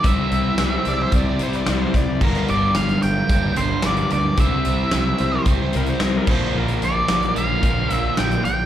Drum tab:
CC |----------------|x---------------|--------------x-|----------------|
HH |x-x-x-x-x-xxx-x-|-xx-xxx-x-x-xxx-|x-x-x-x-x-xxx---|-xx-xxx-x-x-xxx-|
SD |----o-------o-o-|----o-------o---|----o-------o---|----o-------o---|
BD |o-------o-----o-|o-------o-------|o-------o-----o-|--------o-------|